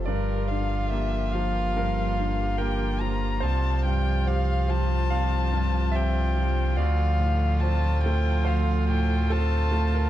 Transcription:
<<
  \new Staff \with { instrumentName = "Violin" } { \time 4/4 \key g \minor \tempo 4 = 72 bes'8 f''8 e''8 f''4. g''8 bes''8 | a''8 g''8 f''8 a''4. g''4 | f''4 a''8 g''8 f''8 g''8 a''4 | }
  \new Staff \with { instrumentName = "String section" } { \time 4/4 \key g \minor <f g' bes'>1 | <f g' c''>1 | <f a' c''>1 | }
  \new Staff \with { instrumentName = "Viola" } { \time 4/4 \key g \minor f'1 | f'1 | f'1 | }
  \new Staff \with { instrumentName = "Grand piano" } { \time 4/4 \key g \minor d''2 bes'4 bes'4 | c''2 f''4 e''4 | d''2 c''4 a'8. bes'16 | }
  \new Staff \with { instrumentName = "Grand piano" } { \clef bass \time 4/4 \key g \minor g,8 d8 <bes g'>8 f8 g,8 d8 <bes g'>8 f8 | c,8 g,8 <c' g'>8 f8 c,8 g,8 <c' g'>8 f8 | d,8 a,8 <c' f'>8 a8 d,8 a,8 <c' f'>8 a8 | }
  \new Staff \with { instrumentName = "Sub bass" } { \clef bass \time 4/4 \key g \minor g,,1 | c,1 | d,1 | }
>>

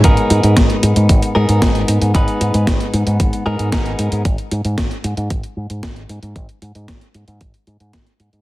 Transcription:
<<
  \new Staff \with { instrumentName = "Clean electric guitar" } { \time 4/4 \key gis \minor \tempo 4 = 114 <gis, b dis' gis' ais'>2~ <gis, b dis' gis' ais'>8 <gis, b dis' gis' ais'>4. | <gis, b dis' gis' b'>2~ <gis, b dis' gis' b'>8 <gis, b dis' gis' ais'>8 <gis, b dis' gis' ais'>4 | r1 | r1 | }
  \new Staff \with { instrumentName = "Fingered electric bass" } { \clef bass \time 4/4 \key gis \minor gis,,16 r16 gis,16 gis,16 gis,,16 r16 gis,16 gis,16 gis,,16 r16 gis,16 gis,16 gis,,8 gis,16 gis,16 | gis,,16 r16 gis,16 gis,16 gis,,16 r16 gis,16 gis,16 gis,,16 r16 gis,16 gis,16 gis,,8 gis,16 gis,16 | gis,,16 r16 gis,16 gis,16 gis,,16 r16 gis,16 gis,16 gis,,16 r16 gis,16 gis,16 gis,,8 gis,16 gis,16 | gis,,16 r16 gis,16 gis,16 gis,,16 r16 gis,16 gis,16 gis,,16 r16 gis,16 gis,16 r8 gis,16 gis,16 | }
  \new DrumStaff \with { instrumentName = "Drums" } \drummode { \time 4/4 <hh bd>16 hh16 hh16 hh16 <hh bd sn>16 hh16 hh16 hh16 <hh bd>16 hh8 hh16 <hh bd sn>16 hh16 hh16 hh16 | <hh bd>16 hh16 hh16 hh16 <hh bd sn>16 hh16 hh16 hh16 <hh bd>16 hh8 hh16 <hh bd sn>16 hh16 hh16 hh16 | <hh bd>16 hh16 hh16 hh16 <hh bd sn>16 hh16 hh16 hh16 <hh bd>16 hh8 hh16 <hh bd sn>16 hh16 hh16 hh16 | <hh bd>16 hh16 hh16 hh16 <hh bd sn>16 hh16 hh16 hh16 <hh bd>16 hh16 hh16 hh16 <hh bd sn>16 hh16 hh16 hh16 | }
>>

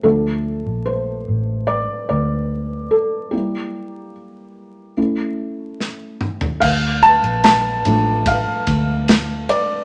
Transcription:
<<
  \new Staff \with { instrumentName = "Felt piano" } { \time 4/4 \key d \minor \tempo 4 = 73 a'4 c''4 d''8 d''4 a'8 | g'4 r2. | f''8 a''8 a''4 f''4 r8 d''8 | }
  \new Staff \with { instrumentName = "Felt piano" } { \time 4/4 \key d \minor <f a d'>1 | <g bes e'>2 <a cis' e'>2 | r4. <f a d'>8 r2 | }
  \new Staff \with { instrumentName = "Fingered electric bass" } { \clef bass \time 4/4 \key d \minor d,8. bes,,8. a,,8. r16 d,4 r8 | r1 | d,8. bes,,8. a,,8. r16 d,4 r8 | }
  \new DrumStaff \with { instrumentName = "Drums" } \drummode { \time 4/4 r4 r4 r4 r4 | r4 r4 r4 sn8 toml16 tomfh16 | <cymc bd>8 cymr16 cymr16 <cymr sn>8 cymr8 <bd cymr>8 <bd cymr>8 <cymr sn>8 cymr8 | }
>>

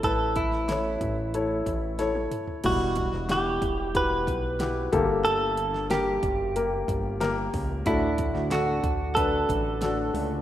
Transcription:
<<
  \new Staff \with { instrumentName = "Clean electric guitar" } { \time 4/4 \key e \dorian \tempo 4 = 92 a'8 e'2. r8 | fis'4 g'4 b'4. r8 | a'4 g'2~ g'8 r8 | e'4 fis'4 a'2 | }
  \new Staff \with { instrumentName = "Grand piano" } { \time 4/4 \key e \dorian <e' a' b'>8 r8 <e' a' cis''>8 r8 <e' a' cis''>8 r8 <e' a' cis''>8 r8 | <g e' fis'>8 r8 <e' g' fis''>8 r8 <e' fis' g'>8 r8 <e' fis' g'>8 <bes g' a'>8~ | <bes g' a'>8 r8 <bes g' bes'>8 r8 <bes g' bes'>8 r8 <bes g' bes'>8 r8 | <d' fis' a'>8 r8 <d' fis' a'>8 r8 <d' fis' b'>8 r8 <d' fis' a'>8 r8 | }
  \new Staff \with { instrumentName = "Grand piano" } { \clef bass \time 4/4 \key e \dorian r1 | b,4. r2 <g, d>8~ | <g, d>4 r2. | a,4. r2 r8 | }
  \new Staff \with { instrumentName = "Steel-string acoustic guitar" } { \time 4/4 \key e \dorian r1 | r1 | r1 | <d a d' fis'>8. <a d' fis'>8 <a d' fis'>4~ <a d' fis'>16 <d a d' fis'>8 <d a d' fis'>8 <d a d' fis'>8 | }
  \new Staff \with { instrumentName = "Analog synth bass" } { \clef bass \time 4/4 \key e \dorian a,,4. a,,4 a,,4 r8 | e,,8. e,,8. e,,4 b,,4 g,,8 | g,,4. fis,,4 g,,4 cis,8 | d,8. d,8. d,4 a,,4 cis,8 | }
  \new DrumStaff \with { instrumentName = "Drums" } \drummode { \time 4/4 <hh bd>8 <hh bd>16 sn16 <hh sn>8 <hh bd>8 hh8 <hh bd>8 <hh sn>16 tommh16 <hh toml>16 tomfh16 | <cymc hh bd>8 <hh bd>16 sn16 <hh sn>8 <hh bd>8 <hh bd>8 <hh bd>8 <hh sn>8 <hh bd>8 | hh8 hh16 sn16 <hh sn>8 <hh bd>8 hh8 <hh bd>8 <hh sn>8 <hho bd>8 | <hh bd>8 <hh bd>16 sn16 <hh sn>8 <hh bd>8 <hh bd>8 <hh bd>8 <hh sn>8 hho8 | }
>>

